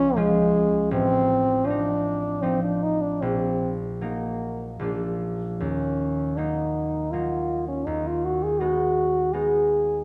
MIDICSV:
0, 0, Header, 1, 3, 480
1, 0, Start_track
1, 0, Key_signature, -6, "minor"
1, 0, Tempo, 748130
1, 581, Time_signature, 3, 2, 24, 8
1, 1551, Tempo, 789474
1, 3951, Tempo, 747198
1, 5391, Tempo, 722022
1, 6346, End_track
2, 0, Start_track
2, 0, Title_t, "French horn"
2, 0, Program_c, 0, 60
2, 0, Note_on_c, 0, 61, 90
2, 110, Note_on_c, 0, 56, 84
2, 120, Note_off_c, 0, 61, 0
2, 582, Note_off_c, 0, 56, 0
2, 590, Note_on_c, 0, 60, 80
2, 1070, Note_on_c, 0, 62, 82
2, 1080, Note_off_c, 0, 60, 0
2, 1554, Note_on_c, 0, 60, 73
2, 1563, Note_off_c, 0, 62, 0
2, 1672, Note_off_c, 0, 60, 0
2, 1682, Note_on_c, 0, 62, 61
2, 1803, Note_on_c, 0, 63, 70
2, 1812, Note_off_c, 0, 62, 0
2, 1914, Note_on_c, 0, 62, 62
2, 1923, Note_off_c, 0, 63, 0
2, 2036, Note_on_c, 0, 60, 68
2, 2045, Note_off_c, 0, 62, 0
2, 2350, Note_off_c, 0, 60, 0
2, 2524, Note_on_c, 0, 58, 50
2, 2977, Note_off_c, 0, 58, 0
2, 3486, Note_on_c, 0, 61, 59
2, 3958, Note_on_c, 0, 63, 54
2, 3968, Note_off_c, 0, 61, 0
2, 4432, Note_on_c, 0, 65, 61
2, 4442, Note_off_c, 0, 63, 0
2, 4788, Note_off_c, 0, 65, 0
2, 4796, Note_on_c, 0, 61, 53
2, 4909, Note_on_c, 0, 63, 57
2, 4919, Note_off_c, 0, 61, 0
2, 5045, Note_on_c, 0, 65, 56
2, 5055, Note_off_c, 0, 63, 0
2, 5160, Note_on_c, 0, 66, 58
2, 5169, Note_off_c, 0, 65, 0
2, 5279, Note_on_c, 0, 68, 60
2, 5289, Note_off_c, 0, 66, 0
2, 5391, Note_on_c, 0, 66, 68
2, 5401, Note_off_c, 0, 68, 0
2, 5871, Note_on_c, 0, 68, 57
2, 5881, Note_off_c, 0, 66, 0
2, 6346, Note_off_c, 0, 68, 0
2, 6346, End_track
3, 0, Start_track
3, 0, Title_t, "Harp"
3, 0, Program_c, 1, 46
3, 0, Note_on_c, 1, 37, 56
3, 0, Note_on_c, 1, 53, 46
3, 0, Note_on_c, 1, 61, 46
3, 0, Note_on_c, 1, 65, 45
3, 99, Note_off_c, 1, 53, 0
3, 101, Note_off_c, 1, 61, 0
3, 106, Note_on_c, 1, 53, 45
3, 108, Note_off_c, 1, 65, 0
3, 110, Note_on_c, 1, 61, 42
3, 116, Note_on_c, 1, 65, 48
3, 585, Note_on_c, 1, 33, 58
3, 600, Note_off_c, 1, 61, 0
3, 606, Note_off_c, 1, 37, 0
3, 1051, Note_off_c, 1, 53, 0
3, 1053, Note_on_c, 1, 53, 41
3, 1072, Note_on_c, 1, 60, 39
3, 1092, Note_on_c, 1, 63, 43
3, 1547, Note_off_c, 1, 53, 0
3, 1554, Note_off_c, 1, 60, 0
3, 1554, Note_off_c, 1, 63, 0
3, 1555, Note_on_c, 1, 53, 38
3, 1560, Note_on_c, 1, 60, 37
3, 1562, Note_on_c, 1, 63, 39
3, 2040, Note_on_c, 1, 34, 47
3, 2054, Note_off_c, 1, 33, 0
3, 2055, Note_off_c, 1, 53, 0
3, 2056, Note_off_c, 1, 65, 0
3, 2058, Note_off_c, 1, 60, 0
3, 2519, Note_off_c, 1, 63, 0
3, 2521, Note_on_c, 1, 54, 34
3, 2525, Note_on_c, 1, 58, 32
3, 2528, Note_on_c, 1, 63, 36
3, 2993, Note_off_c, 1, 34, 0
3, 2996, Note_on_c, 1, 34, 42
3, 3001, Note_off_c, 1, 58, 0
3, 3006, Note_on_c, 1, 53, 31
3, 3011, Note_on_c, 1, 62, 33
3, 3020, Note_off_c, 1, 54, 0
3, 3020, Note_on_c, 1, 58, 30
3, 3022, Note_off_c, 1, 63, 0
3, 3488, Note_on_c, 1, 39, 42
3, 3504, Note_off_c, 1, 53, 0
3, 3505, Note_off_c, 1, 34, 0
3, 3506, Note_off_c, 1, 62, 0
3, 3951, Note_off_c, 1, 58, 0
3, 3954, Note_on_c, 1, 54, 29
3, 3960, Note_on_c, 1, 58, 32
3, 3962, Note_on_c, 1, 63, 31
3, 4435, Note_off_c, 1, 54, 0
3, 4438, Note_off_c, 1, 58, 0
3, 4440, Note_off_c, 1, 63, 0
3, 4442, Note_on_c, 1, 54, 29
3, 4447, Note_on_c, 1, 58, 29
3, 4447, Note_on_c, 1, 63, 34
3, 4908, Note_off_c, 1, 39, 0
3, 4916, Note_on_c, 1, 39, 38
3, 4934, Note_off_c, 1, 54, 0
3, 4935, Note_off_c, 1, 58, 0
3, 5384, Note_off_c, 1, 63, 0
3, 5388, Note_on_c, 1, 56, 31
3, 5391, Note_on_c, 1, 59, 32
3, 5392, Note_on_c, 1, 63, 33
3, 5866, Note_off_c, 1, 56, 0
3, 5870, Note_off_c, 1, 59, 0
3, 5873, Note_off_c, 1, 63, 0
3, 5874, Note_on_c, 1, 56, 30
3, 5878, Note_on_c, 1, 59, 32
3, 5881, Note_on_c, 1, 63, 32
3, 6346, Note_off_c, 1, 39, 0
3, 6346, Note_off_c, 1, 56, 0
3, 6346, Note_off_c, 1, 59, 0
3, 6346, Note_off_c, 1, 63, 0
3, 6346, End_track
0, 0, End_of_file